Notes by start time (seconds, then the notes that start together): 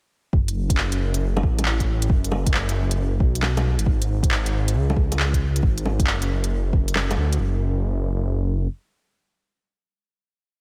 0.33 F#1, kick
0.48 closed hi-hat
0.70 kick, closed hi-hat
0.77 clap
0.92 closed hi-hat
1.14 closed hi-hat
1.37 low bongo
1.43 A1, kick
1.59 closed hi-hat, low bongo
1.65 clap
1.80 kick, closed hi-hat
2.02 closed hi-hat
2.10 F#1, kick
2.24 closed hi-hat
2.32 low bongo
2.46 kick, closed hi-hat
2.54 clap
2.69 closed hi-hat
2.91 closed hi-hat
3.20 B1, kick
3.35 closed hi-hat
3.43 clap, low bongo
3.57 closed hi-hat, low bongo
3.78 G#1, closed hi-hat
3.86 kick
4.02 closed hi-hat
4.23 kick, closed hi-hat
4.31 clap
4.46 closed hi-hat
4.68 closed hi-hat
4.74 C#2
4.90 low bongo
4.97 kick
5.12 closed hi-hat, low bongo
5.20 clap
5.33 kick, closed hi-hat
5.56 closed hi-hat
5.63 G#1, kick
5.78 closed hi-hat
5.86 low bongo
5.99 kick, closed hi-hat
6.06 F#1, clap
6.22 closed hi-hat
6.44 closed hi-hat
6.73 kick
6.88 closed hi-hat
6.96 clap, low bongo
7.11 closed hi-hat, low bongo
7.17 D2
7.33 closed hi-hat
7.39 F#1